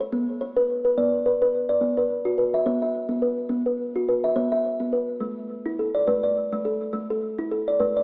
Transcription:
0.01 C#5
0.12 B3
0.41 C#5
0.56 B4
0.85 B4
0.97 B3 D5
1.26 B4
1.42 B4
1.69 D5
1.81 B3
1.98 B4
2.25 F#4
2.38 B4
2.54 E5
2.66 B3 C#5
2.82 E5
3.09 B3
3.22 B4
3.49 B3
3.66 B4
3.96 F#4
4.09 B4
4.24 E5
4.36 B3 C#5
4.52 E5
4.80 B3
4.93 B4
5.20 A3
5.66 E4
5.79 A4
5.94 D5
6.07 A3 B4
6.23 D5
6.53 A3
6.65 A4
6.93 A3
7.10 A4
7.39 E4
7.52 A4
7.68 D5
7.80 A3 B4
7.97 D5

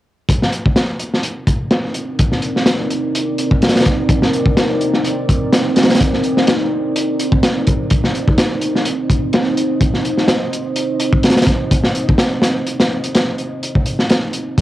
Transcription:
0.28 C4 D#4 A#4 D5, kick, closed hi-hat
0.42 snare
0.52 closed hi-hat
0.65 kick
0.76 snare, closed hi-hat
0.99 closed hi-hat
1.14 snare
1.23 closed hi-hat
1.47 kick, closed hi-hat
1.71 snare, closed hi-hat
1.94 closed hi-hat
2.19 kick, closed hi-hat
2.32 snare
2.42 closed hi-hat
2.56 snare
2.66 snare, closed hi-hat
2.91 closed hi-hat
3.15 closed hi-hat
3.38 closed hi-hat
3.51 kick
3.62 snare, closed hi-hat
3.69 snare, closed hi-hat
3.75 snare, closed hi-hat
3.80 snare, closed hi-hat
3.85 kick, closed hi-hat
4.09 kick, closed hi-hat
4.22 snare
4.34 closed hi-hat
4.46 kick
4.57 snare, closed hi-hat
4.81 closed hi-hat
4.94 snare
5.05 closed hi-hat
5.29 kick, closed hi-hat
5.53 snare, closed hi-hat
5.76 snare, closed hi-hat
5.83 snare, closed hi-hat
5.90 snare, closed hi-hat
5.95 snare, closed hi-hat
6.00 kick, closed hi-hat
6.13 snare
6.24 closed hi-hat
6.37 snare
6.47 snare, closed hi-hat
6.96 closed hi-hat
7.20 closed hi-hat
7.32 kick
7.43 snare, closed hi-hat
7.67 kick, closed hi-hat
7.90 C5 D#5, kick, closed hi-hat
8.04 snare
8.15 closed hi-hat
8.28 kick
8.38 snare, closed hi-hat
8.61 closed hi-hat
8.75 snare
8.85 closed hi-hat
9.10 kick, closed hi-hat
9.33 snare, closed hi-hat
9.57 closed hi-hat
9.81 kick, closed hi-hat
9.94 snare
10.05 closed hi-hat
10.18 snare
10.28 snare, closed hi-hat
10.53 closed hi-hat
10.76 closed hi-hat
11.00 closed hi-hat
11.13 kick
11.23 snare, closed hi-hat
11.30 snare, closed hi-hat
11.36 snare, closed hi-hat
11.42 snare, closed hi-hat
11.47 kick, closed hi-hat
11.71 kick, closed hi-hat
11.84 snare
11.95 closed hi-hat
12.09 kick
12.18 snare, closed hi-hat
12.42 snare, closed hi-hat
12.66 closed hi-hat
12.79 snare, closed hi-hat
13.03 closed hi-hat
13.14 snare, closed hi-hat
13.38 closed hi-hat
13.63 closed hi-hat
13.75 kick
13.86 closed hi-hat
13.99 snare
14.09 snare, closed hi-hat
14.33 closed hi-hat
14.58 kick, closed hi-hat

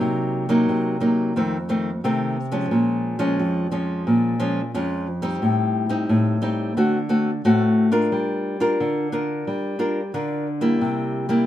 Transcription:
Already playing: F#3 A#3 D#4
0.01 C3
0.49 F#3 A#3 D#4
0.69 C3
1.00 F#3 A#3 D#4
1.36 F2 D#3 A3 C4
1.69 D#3 A3 C4
2.04 C3 D#3 A3 C4
2.52 F3 G#3 C#4
2.71 A#2
3.19 F3 G#3 C#4
3.39 F2
3.72 F3 G#3 C#4
4.07 A#2
4.40 F3 G#3 C#4
4.74 F2 F3 G#3 C#4
5.22 G3 C4 D#4
5.42 A2
5.89 G3 C4 D#4
6.09 A2
6.42 G3 C4 D#4
6.77 D3 A3 C4 F#4
7.09 A3 C4 F#4
7.45 A2 A3 C4 F#4
7.92 D4 F4 A#4
8.12 G3
8.60 D4 F4 A#4
8.80 D3
9.12 D4 F4 A#4
9.47 G3
9.79 D4 F4 A#4
10.14 D3 D4 F4 A#4
10.61 G3 A#3 E4
10.81 C3
11.29 G3 A#3 E4

